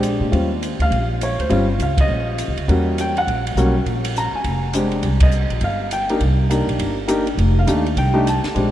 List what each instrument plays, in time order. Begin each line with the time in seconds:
Already playing: upright bass A#1, grand piano G#3 C4 D4 G4
0.03 hi-hat pedal, ride
0.20 upright bass A#2
0.32 upright bass D#2, grand piano G3 C4 C#4 F4, kick, ride
0.62 hi-hat pedal, ride
0.79 upright bass D2, grand piano F5, ride
0.91 upright bass A#1, kick, ride
1.21 grand piano C#5, hi-hat pedal, ride
1.38 upright bass D2, grand piano C5, ride
1.49 upright bass G1, grand piano G3 C4 C#4 F4, kick, ride
1.78 upright bass C#2, grand piano F5, hi-hat pedal, ride
1.98 grand piano D#5, kick, ride
2.08 upright bass A#1
2.38 hi-hat pedal, ride
2.48 upright bass C2
2.57 upright bass C#2, ride
2.68 upright bass E2, grand piano G3 A#3 C#4 F#4, kick, ride
2.98 grand piano G5, hi-hat pedal, ride
3.17 grand piano F#5, ride
3.27 upright bass A#1, kick, ride
3.47 ride
3.55 upright bass B1, grand piano G3 A#3 C#4 F#4, hi-hat pedal
3.86 upright bass A#1, kick, ride
4.05 ride
4.16 grand piano A#5, hi-hat pedal
4.33 grand piano G#5, muted upright bass stroke
4.44 upright bass F1, kick, ride
4.73 grand piano G#3 C4 D4 G4, hi-hat pedal, ride
4.91 ride
5.02 upright bass C2, kick, ride
5.20 grand piano D#5, kick, ride
5.31 hi-hat pedal
5.50 upright bass A#1, ride
5.61 upright bass G1, grand piano F5, kick, ride
5.91 grand piano G5, hi-hat pedal, ride
6.09 grand piano A#3 D4 D#4 G4, ride
6.20 upright bass C2, kick, ride
6.50 grand piano A#3 D4 D#4 G4, hi-hat pedal, ride
6.67 upright bass B1, ride
6.79 upright bass G1, kick, ride
7.08 grand piano A#3 D4 D#4 G4, hi-hat pedal, ride
7.27 ride
7.37 upright bass F1, kick, ride
7.59 grand piano F5
7.67 upright bass D#2, grand piano A3 D4 D#4 G4, hi-hat pedal, ride
7.86 ride
7.96 upright bass C2, grand piano G5, kick, ride
8.14 grand piano A3 D4 D#4 G4
8.27 grand piano A5, hi-hat pedal, ride
8.44 muted upright bass stroke, snare, ride
8.55 upright bass A#1, grand piano G#3 C4 D4 G4, kick, ride